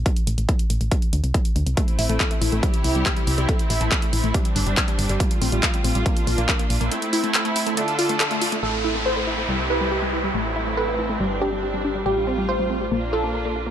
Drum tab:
HH |xxxxxxxxxxxxxxxx|xxoxxxoxxxoxxxox|xxoxxxoxxxoxxxox|xxoxxxoxxxoxxxox|
CP |----------------|----x-------x---|----x-------x---|----x-------x---|
BD |o---o---o---o---|o---o---o---o---|o---o---o---o---|o---o---o---o---|

HH |xxoxxxoxxxoxxxox|----------------|----------------|----------------|
CP |----x-------x---|----------------|----------------|----------------|
BD |----------------|----------------|----------------|----------------|